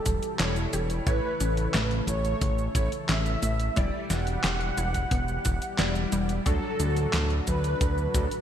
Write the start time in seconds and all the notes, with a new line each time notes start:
Already playing: B2 E3 G3 E4 G4 A4 D5
0.06 E1 G3, kick, closed hi-hat, shaker
0.23 closed hi-hat, shaker
0.39 E1 E3 G3 E4 C#5, snare, clap, closed hi-hat, shaker
0.56 closed hi-hat, shaker
0.73 E1 G4, closed hi-hat, shaker
0.90 closed hi-hat, shaker
1.07 A1 C#3 A3 E4 A4 B4 C#5, kick, closed hi-hat, shaker
1.40 A1 C#4, closed hi-hat, shaker
1.57 closed hi-hat, shaker
1.74 A1 A3, snare, clap, closed hi-hat, shaker
1.91 closed hi-hat
2.07 A1 E3 C#5, kick, closed hi-hat, shaker
2.25 closed hi-hat, shaker
2.41 A1 C#3, kick, closed hi-hat, shaker
2.58 shaker
2.75 A1 A3 E4 C#5, kick, closed hi-hat, shaker
2.92 closed hi-hat, shaker
3.09 A1 C#4 E5, snare, clap, closed hi-hat, shaker
3.26 closed hi-hat, shaker
3.43 A1 A3, closed hi-hat, shaker
3.60 closed hi-hat, shaker
3.76 E1 B2 G3 E4 G4 D5, kick, closed hi-hat, shaker
4.10 E1 E3 F#5, snare, closed hi-hat, shaker
4.27 closed hi-hat, shaker
4.44 E1 G4, snare, clap, closed hi-hat, shaker
4.61 closed hi-hat
4.77 E1 E4, closed hi-hat, shaker
4.94 kick, closed hi-hat, shaker
5.11 E1 B3, kick, closed hi-hat, shaker
5.28 shaker
5.45 E1 E3, kick, closed hi-hat, shaker
5.62 closed hi-hat, shaker
5.78 E1 G3 B3 E4 D5, snare, clap, closed hi-hat, shaker
5.95 closed hi-hat, shaker
6.12 E1 G3, closed hi-hat, shaker
6.29 closed hi-hat, shaker
6.46 D2 A2 D3 F#3 D4 F#4 A4, kick, closed hi-hat, shaker
6.80 D2 D4, closed hi-hat, shaker
6.97 closed hi-hat, shaker
7.13 D2 A3, snare, clap, closed hi-hat, shaker
7.30 closed hi-hat
7.47 D2 F#3 B4, kick, closed hi-hat, shaker
7.64 closed hi-hat, shaker
7.81 D2 D3, kick, closed hi-hat, shaker
7.98 shaker
8.14 D2 F#3 D4 F#4 A4, kick, closed hi-hat, shaker
8.31 closed hi-hat, shaker